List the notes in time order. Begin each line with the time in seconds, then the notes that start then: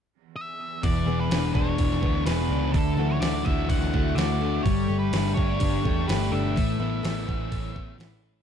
0.36 E5
0.83 E1 E2 E3 B3 D5, kick, open hi-hat
1.06 E1 E3 B3 G#4
1.20 B4
1.30 E1 B3 D4, snare, open hi-hat
1.54 E1 D4 G#4 C#5, kick, snare
1.78 E1 E3 D4 G#4, kick, open hi-hat
1.92 snare
2.01 D2 B3 G#4, kick
2.25 E1 B3 G#4 B4, snare, open hi-hat
2.49 C#2 B3 D4
2.72 D2 D3 E3 A4, kick, open hi-hat
2.96 D2 E3 A3 F#4
3.08 C#5
3.20 D2 E3 A3 D4 D5, snare, open hi-hat
3.43 D2 E4 F#4 E5, kick
3.68 D2 D3 D4 F#4 F#5, kick, open hi-hat
3.82 snare
3.93 D2 A3 F#4, kick
4.15 D2 E3 A3 F#4 D5, snare, open hi-hat
4.41 A3 D4 E4
4.63 G1 G3 A3 C#5, kick, open hi-hat
4.88 G1 G3 A3 G4
4.99 B4
5.13 G1 A3 D4, snare, open hi-hat
5.34 G1 D4 G4 C#5, kick
5.59 G1 G3 D4 G4, kick, open hi-hat
5.84 E2 A3 G4, kick
6.08 G1 A3 G4 B4, snare, open hi-hat
6.31 G1 A3 D4 E5
6.56 A1 A2 E3 A3, kick, open hi-hat
6.79 A1 E3 B3 E4
7.03 A1 E3 B3 A4, snare, open hi-hat
7.27 A1 B3 C#4 C#5, kick
7.51 A1 E3 C#4 A4, kick, open hi-hat
7.74 A1 E3 B3 C#5, kick
7.98 A1 E3 E4, snare, open hi-hat
8.22 E3 C#4 A4